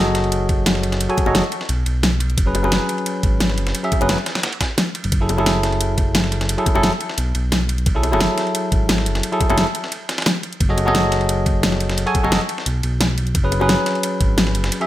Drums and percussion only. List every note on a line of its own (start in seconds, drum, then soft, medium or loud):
0.15 snare soft
0.15 closed hi-hat medium
0.15 ride medium
0.24 ride soft
0.32 closed hi-hat medium
0.32 ride medium
0.49 kick loud
0.49 closed hi-hat medium
0.49 ride medium
0.66 snare loud
0.66 closed hi-hat medium
0.66 ride medium
0.75 snare soft
0.83 closed hi-hat medium
0.83 ride medium
0.92 snare medium
0.92 closed hi-hat soft
1.00 closed hi-hat medium
1.00 ride medium
1.10 ride soft
1.17 kick medium
1.17 closed hi-hat medium
1.17 ride medium
1.17 high bongo soft
1.26 high bongo medium
1.35 snare loud
1.35 closed hi-hat medium
1.35 ride medium
1.44 ride soft
1.52 closed hi-hat medium
1.52 ride medium
1.61 snare soft
1.69 closed hi-hat medium
1.69 ride medium
1.86 closed hi-hat medium
1.86 ride medium
2.03 snare loud
2.03 closed hi-hat medium
2.03 ride medium
2.20 closed hi-hat medium
2.20 ride medium
2.30 closed hi-hat soft
2.38 kick loud
2.38 closed hi-hat medium
2.38 ride medium
2.55 closed hi-hat medium
2.55 ride medium
2.55 high bongo soft
2.64 high bongo medium
2.72 snare loud
2.72 closed hi-hat medium
2.72 ride medium
2.89 closed hi-hat medium
2.89 ride medium
2.98 ride soft
3.06 closed hi-hat medium
3.06 ride medium
3.23 kick loud
3.23 closed hi-hat medium
3.23 ride medium
3.40 snare loud
3.40 closed hi-hat medium
3.40 ride medium
3.50 snare soft
3.58 closed hi-hat medium
3.58 ride medium
3.67 snare medium
3.67 closed hi-hat soft
3.75 closed hi-hat medium
3.75 ride medium
3.84 ride soft
3.92 kick medium
3.92 closed hi-hat medium
3.92 ride medium
3.92 high bongo soft
4.01 closed hi-hat soft
4.01 high bongo medium
4.09 snare loud
4.09 closed hi-hat medium
4.09 ride medium
4.18 ride soft
4.26 snare loud
4.26 closed hi-hat medium
4.26 ride medium
4.35 snare soft
4.35 snare loud
4.35 ride medium
4.43 snare loud
4.43 closed hi-hat medium
4.43 ride medium
4.53 ride medium
4.61 kick medium
4.61 snare loud
4.61 closed hi-hat medium
4.61 ride medium
4.78 snare loud
4.78 closed hi-hat medium
4.78 ride medium
4.95 closed hi-hat medium
4.95 ride medium
5.04 closed hi-hat soft
5.04 ride medium
5.12 kick loud
5.12 closed hi-hat medium
5.12 ride medium
5.29 closed hi-hat medium
5.29 ride medium
5.29 high bongo soft
5.38 high bongo medium
5.46 snare loud
5.46 closed hi-hat medium
5.46 ride medium
5.63 snare medium
5.63 closed hi-hat medium
5.63 ride medium
5.72 ride soft
5.81 closed hi-hat medium
5.81 ride medium
5.98 kick loud
5.98 closed hi-hat medium
5.98 ride medium
6.15 snare loud
6.15 closed hi-hat medium
6.15 ride medium
6.24 snare soft
6.32 closed hi-hat medium
6.32 ride medium
6.41 snare medium
6.41 closed hi-hat soft
6.49 closed hi-hat medium
6.49 ride medium
6.58 ride soft
6.66 kick loud
6.66 closed hi-hat medium
6.66 ride medium
6.66 high bongo medium
6.75 high bongo medium
6.83 snare loud
6.83 closed hi-hat medium
6.83 ride medium
6.92 ride soft
7.00 closed hi-hat medium
7.00 ride medium
7.10 snare soft
7.18 closed hi-hat medium
7.18 ride medium
7.35 closed hi-hat medium
7.35 ride medium
7.52 snare loud
7.52 closed hi-hat loud
7.52 ride medium
7.69 closed hi-hat medium
7.69 ride medium
7.78 closed hi-hat soft
7.86 kick loud
7.86 closed hi-hat medium
7.86 ride medium
8.03 closed hi-hat medium
8.03 ride medium
8.03 high bongo medium
8.13 high bongo medium
8.21 snare loud
8.21 closed hi-hat medium
8.21 ride medium
8.38 snare medium
8.38 closed hi-hat medium
8.38 ride medium
8.47 ride soft
8.55 closed hi-hat medium
8.55 ride medium
8.72 kick loud
8.72 closed hi-hat medium
8.72 ride medium
8.89 snare loud
8.89 closed hi-hat medium
8.89 ride medium
8.98 snare soft
9.06 closed hi-hat medium
9.06 ride medium
9.15 snare medium
9.15 closed hi-hat soft
9.23 closed hi-hat medium
9.23 ride medium
9.32 ride soft
9.40 kick loud
9.40 closed hi-hat medium
9.40 ride medium
9.40 high bongo soft
9.50 closed hi-hat soft
9.50 high bongo medium
9.58 snare loud
9.58 closed hi-hat medium
9.58 ride medium
9.67 ride soft
9.75 closed hi-hat medium
9.75 ride medium
9.84 snare medium
9.92 closed hi-hat medium
9.92 ride medium
10.09 snare loud
10.09 closed hi-hat medium
10.09 ride medium
10.18 snare medium
10.18 ride medium
10.22 snare medium
10.22 ride medium
10.26 snare loud
10.26 closed hi-hat medium
10.26 ride medium
10.43 closed hi-hat medium
10.43 ride medium
10.53 closed hi-hat soft
10.60 kick loud
10.60 closed hi-hat medium
10.60 ride medium
10.78 closed hi-hat medium
10.78 ride medium
10.78 high bongo soft
10.88 high bongo medium
10.95 snare loud
10.95 closed hi-hat medium
10.95 ride medium
11.12 snare medium
11.12 closed hi-hat medium
11.12 ride medium
11.21 ride soft
11.29 closed hi-hat medium
11.29 ride medium
11.46 kick loud
11.46 closed hi-hat medium
11.46 ride medium
11.63 snare loud
11.63 closed hi-hat medium
11.63 ride medium
11.72 snare soft
11.80 closed hi-hat medium
11.80 ride medium
11.89 snare medium
11.89 closed hi-hat soft
11.98 closed hi-hat medium
11.98 ride medium
12.07 ride soft
12.15 kick medium
12.15 closed hi-hat medium
12.15 ride medium
12.15 high bongo soft
12.24 high bongo medium
12.32 snare loud
12.32 closed hi-hat medium
12.32 ride medium
12.41 ride soft
12.49 closed hi-hat medium
12.49 ride medium
12.58 snare medium
12.66 closed hi-hat medium
12.66 ride medium
12.83 closed hi-hat medium
12.83 ride medium
13.01 snare loud
13.01 closed hi-hat medium
13.01 ride medium
13.18 closed hi-hat medium
13.18 ride medium
13.27 closed hi-hat soft
13.35 kick loud
13.35 closed hi-hat medium
13.35 ride medium
13.52 closed hi-hat medium
13.52 ride medium
13.52 high bongo soft
13.61 high bongo medium
13.69 snare loud
13.69 closed hi-hat medium
13.69 ride medium
13.86 snare medium
13.86 closed hi-hat medium
13.86 ride medium
13.95 ride soft
14.03 closed hi-hat medium
14.03 ride medium
14.21 kick medium
14.21 closed hi-hat medium
14.21 ride medium
14.38 snare loud
14.38 closed hi-hat medium
14.38 ride medium
14.47 snare soft
14.55 closed hi-hat medium
14.55 ride medium
14.64 snare medium
14.64 closed hi-hat soft
14.72 closed hi-hat medium
14.72 ride medium
14.81 ride soft